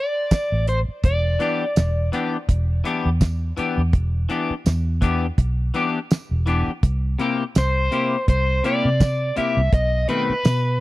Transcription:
0.00 0.68 D5 medium
0.31 kick medium
0.31 snare loud
0.31 closed hi-hat medium
0.31 tambourine loud
0.52 0.84 A1 medium
0.67 0.78 C5 medium
0.67 closed hi-hat medium
0.88 muted fingered electric bass stroke soft
1.04 1.36 E1 loud
1.04 2.09 D5 medium
1.04 kick loud
1.04 closed hi-hat medium
1.39 1.63 E3 medium
1.39 1.63 B3 medium
1.39 1.64 D4 medium
1.39 1.64 G4 loud
1.39 closed hi-hat medium
1.76 2.09 E1 medium
1.76 snare loud
1.76 closed hi-hat medium
1.76 tambourine loud
2.12 2.36 E3 medium
2.12 2.36 B3 medium
2.12 2.37 D4 medium
2.12 2.37 G4 medium
2.12 closed hi-hat medium
2.49 2.81 E1 medium
2.49 kick medium
2.49 closed hi-hat medium
2.84 3.08 E3 medium
2.84 3.08 B3 medium
2.84 3.09 D4 medium
2.84 3.09 G4 medium
2.84 closed hi-hat medium
3.06 3.51 E2 medium
3.21 kick medium
3.21 snare loud
3.21 closed hi-hat medium
3.21 tambourine loud
3.57 3.80 E3 medium
3.57 3.81 B3 medium
3.57 3.81 D4 medium
3.57 3.82 G4 medium
3.57 muted fingered electric bass stroke soft
3.57 closed hi-hat medium
3.78 3.92 E2 medium
3.93 4.25 E1 loud
3.93 kick loud
3.93 closed hi-hat medium
4.29 4.53 E3 medium
4.29 4.53 B3 medium
4.29 4.53 D4 medium
4.29 4.54 G4 medium
4.29 closed hi-hat medium
4.50 muted fingered electric bass stroke soft
4.66 5.30 E2 loud
4.66 snare loud
4.66 closed hi-hat medium
4.66 tambourine loud
5.01 5.25 E3 medium
5.01 5.25 B3 medium
5.01 5.26 D4 medium
5.01 5.26 G4 medium
5.01 kick medium
5.01 closed hi-hat medium
5.38 5.70 B1 medium
5.38 kick medium
5.38 closed hi-hat medium
5.74 5.98 E3 medium
5.74 5.98 B3 medium
5.74 5.98 D4 loud
5.74 5.99 G4 loud
5.74 closed hi-hat medium
6.11 snare loud
6.11 closed hi-hat medium
6.11 tambourine loud
6.31 6.63 E1 medium
6.46 6.70 E3 medium
6.46 6.70 B3 medium
6.46 6.71 D4 medium
6.46 6.71 G4 medium
6.46 closed hi-hat medium
6.67 muted fingered electric bass stroke soft
6.83 7.15 C2 medium
6.83 kick loud
6.83 closed hi-hat medium
7.19 7.42 C3 medium
7.19 7.43 A#3 medium
7.19 7.43 E4 medium
7.19 7.43 G4 loud
7.19 closed hi-hat medium
7.55 7.88 C2 medium
7.55 8.25 C5 medium
7.55 snare loud
7.55 closed hi-hat medium
7.55 tambourine loud
7.91 8.15 C3 medium
7.91 8.15 A#3 medium
7.91 8.16 E4 medium
7.91 8.16 G4 medium
7.91 closed hi-hat medium
8.28 8.60 C2 medium
8.28 8.65 C5 medium
8.28 kick medium
8.28 closed hi-hat medium
8.64 8.87 C3 medium
8.64 8.88 A#3 medium
8.64 8.88 E4 medium
8.64 8.88 G4 medium
8.64 9.37 D5 loud
8.64 closed hi-hat medium
8.85 9.31 C3 medium
9.00 kick medium
9.00 snare loud
9.00 closed hi-hat medium
9.00 tambourine loud
9.36 9.59 C3 medium
9.36 9.60 A#3 medium
9.36 9.60 E4 medium
9.36 9.61 G4 medium
9.36 9.74 E5 loud
9.36 muted fingered electric bass stroke soft
9.36 closed hi-hat medium
9.57 9.71 C2 medium
9.73 10.05 B1 loud
9.73 10.07 D#5 loud
9.73 kick loud
9.73 closed hi-hat medium
10.08 10.32 B2 medium
10.08 10.32 D#3 medium
10.08 10.33 A3 medium
10.08 10.33 C4 medium
10.08 10.80 B4 loud
10.08 closed hi-hat medium
10.30 muted fingered electric bass stroke soft
10.45 10.80 B2 medium
10.45 snare loud
10.45 closed hi-hat medium
10.45 tambourine loud

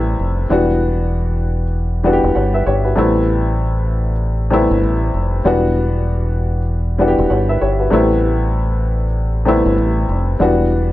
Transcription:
0.00 0.14 A1 loud
0.00 0.52 C3 medium
0.00 0.50 G3 medium
0.00 0.52 A3 medium
0.00 0.51 B3 medium
0.00 0.52 E4 loud
0.19 0.45 F1 medium
0.49 2.19 E1 loud
0.49 1.63 E3 medium
0.49 1.63 G3 medium
0.49 1.64 B3 medium
0.49 1.64 D4 medium
0.49 1.65 F#4 loud
2.03 2.89 E3 medium
2.03 2.89 G3 medium
2.03 2.90 B3 medium
2.03 2.90 D4 medium
2.03 2.13 F#4 medium
2.13 2.40 G4 loud
2.24 2.34 E1 medium
2.35 2.62 G1 loud
2.35 2.53 C#5 medium
2.35 2.53 F#5 medium
2.54 2.66 B4 medium
2.54 2.66 E5 medium
2.67 2.93 G1 medium
2.67 2.85 G4 medium
2.67 2.84 C#5 medium
2.84 3.14 F#4 medium
2.84 3.14 B4 medium
2.95 4.67 A1 loud
2.95 4.10 C3 medium
2.95 4.10 G3 medium
2.95 4.11 A3 medium
2.95 4.11 B3 medium
2.95 4.11 E4 loud
4.50 5.36 C3 medium
4.50 5.37 G3 medium
4.50 5.37 A3 medium
4.50 5.37 B3 medium
4.50 5.38 E4 loud
4.71 4.81 G1 loud
4.83 5.09 A1 loud
5.14 5.40 F1 medium
5.44 7.14 E1 loud
5.44 6.58 E3 medium
5.44 6.58 G3 medium
5.44 6.59 B3 medium
5.44 6.59 D4 medium
5.44 6.59 F#4 loud
6.98 7.84 E3 medium
6.98 7.84 G3 medium
6.98 7.85 B3 medium
6.98 7.85 D4 medium
6.98 7.08 F#4 medium
7.08 7.35 G4 loud
7.18 7.29 E1 medium
7.30 7.57 G1 loud
7.30 7.48 C#5 medium
7.30 7.48 F#5 medium
7.49 7.61 B4 medium
7.49 7.61 E5 medium
7.61 7.88 G1 medium
7.61 7.79 G4 medium
7.61 7.79 C#5 medium
7.79 8.09 F#4 medium
7.79 8.09 B4 medium
7.90 9.62 A1 loud
7.90 9.05 C3 medium
7.90 9.05 G3 medium
7.90 9.05 A3 medium
7.90 9.06 B3 medium
7.90 9.06 E4 loud
9.45 10.31 C3 medium
9.45 10.31 G3 medium
9.45 10.32 A3 medium
9.45 10.32 B3 medium
9.45 10.33 E4 loud
9.66 9.76 G1 medium
9.78 10.04 A1 loud
10.09 10.35 F1 medium
10.39 10.93 E1 loud
10.39 10.93 E3 medium
10.39 10.93 G3 medium
10.39 10.93 B3 medium
10.39 10.93 D4 medium
10.39 10.93 F#4 loud

